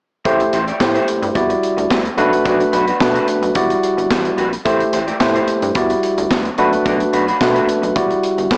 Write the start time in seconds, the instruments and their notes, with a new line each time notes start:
0.25 analog synth bass A1, clean electric guitar A3 E4 G4 C5, tine electric piano A3 E4 G4 C5, kick, closed hi-hat
0.40 closed hi-hat
0.53 analog synth bass A1, clean electric guitar A3 E4 G4 C5, closed hi-hat
0.67 clean electric guitar A3 E4 G4 D5, closed hi-hat
0.80 analog synth bass A2, tine electric piano A3 E4 G4 C5, muted clean electric guitar stroke, kick, snare, clap
0.94 clean electric guitar A3 E4 G4 C5, closed hi-hat
1.08 muted clean electric guitar stroke, closed hi-hat
1.22 analog synth bass G2, muted clean electric guitar stroke, closed hi-hat
1.35 analog synth bass E2, tine electric piano G3 E4 F#4 D5, muted clean electric guitar stroke, kick, closed hi-hat
1.49 muted clean electric guitar stroke, closed hi-hat
1.63 closed hi-hat
1.77 analog synth bass D2, muted clean electric guitar stroke, closed hi-hat
1.90 analog synth bass D2, muted clean electric guitar stroke, kick, snare, clap
2.05 muted clean electric guitar stroke, closed hi-hat
2.17 analog synth bass B1, tine electric piano A3 D4 F#4 B4, clean electric guitar A3 D4 F#4 B4, closed hi-hat
2.32 muted clean electric guitar stroke, closed hi-hat
2.45 analog synth bass B1, clean electric guitar A3 D4 F#4 D5, kick, closed hi-hat
2.60 closed hi-hat
2.72 analog synth bass B1, clean electric guitar A3 D4 F#4 B4, closed hi-hat
2.87 clean electric guitar A3 D4 F#4 B4, closed hi-hat
3.00 analog synth bass B2, tine electric piano A3 D4 F#4 B4, muted clean electric guitar stroke, kick, snare, clap
3.14 clean electric guitar A3 D4 F#4 B4, closed hi-hat
3.28 muted clean electric guitar stroke, closed hi-hat
3.42 analog synth bass B1, muted clean electric guitar stroke, closed hi-hat
3.55 analog synth bass E1, tine electric piano G3 E4 F#4 D5, muted clean electric guitar stroke, kick, closed hi-hat
3.70 muted clean electric guitar stroke, closed hi-hat
3.83 closed hi-hat
3.97 analog synth bass G1, muted clean electric guitar stroke, closed hi-hat
4.10 analog synth bass A1, muted clean electric guitar stroke, kick, snare, clap
4.25 muted clean electric guitar stroke, closed hi-hat
4.38 analog synth bass A#1, clean electric guitar G3 D4 F#4 B4, closed hi-hat
4.52 muted clean electric guitar stroke, closed hi-hat
4.65 analog synth bass A1, clean electric guitar A3 E4 G4 C5, tine electric piano A3 E4 G4 C5, kick, closed hi-hat
4.80 closed hi-hat
4.93 analog synth bass A1, clean electric guitar A3 E4 G4 C5, closed hi-hat
5.07 clean electric guitar A3 E4 G4 D5, closed hi-hat
5.20 analog synth bass A2, tine electric piano A3 E4 G4 C5, muted clean electric guitar stroke, kick, snare, clap
5.35 clean electric guitar A3 E4 G4 C5, closed hi-hat
5.48 muted clean electric guitar stroke, closed hi-hat
5.62 analog synth bass G2, muted clean electric guitar stroke, closed hi-hat
5.75 analog synth bass E2, tine electric piano G3 E4 F#4 D5, muted clean electric guitar stroke, kick, closed hi-hat
5.90 muted clean electric guitar stroke, closed hi-hat
6.03 closed hi-hat
6.18 analog synth bass D2, muted clean electric guitar stroke, closed hi-hat
6.31 analog synth bass D2, muted clean electric guitar stroke, kick, snare, clap
6.45 muted clean electric guitar stroke, closed hi-hat
6.58 analog synth bass B1, tine electric piano A3 D4 F#4 B4, clean electric guitar A3 D4 F#4 B4, closed hi-hat
6.72 muted clean electric guitar stroke, closed hi-hat
6.85 analog synth bass B1, clean electric guitar A3 D4 F#4 D5, kick, closed hi-hat
7.00 closed hi-hat
7.13 analog synth bass B1, clean electric guitar A3 D4 F#4 B4, closed hi-hat
7.27 clean electric guitar A3 D4 F#4 B4, closed hi-hat
7.41 analog synth bass B2, tine electric piano A3 D4 F#4 B4, kick, snare, clap
7.55 clean electric guitar A3 D4 F#4 B4, closed hi-hat
7.68 muted clean electric guitar stroke, closed hi-hat
7.82 analog synth bass B1, muted clean electric guitar stroke, closed hi-hat
7.96 analog synth bass E1, tine electric piano G3 E4 F#4 D5, muted clean electric guitar stroke, kick, closed hi-hat
8.10 muted clean electric guitar stroke, closed hi-hat
8.23 closed hi-hat
8.38 analog synth bass G1, muted clean electric guitar stroke, closed hi-hat
8.51 analog synth bass A1, tine electric piano A4 D5 B5, muted clean electric guitar stroke, kick, snare, clap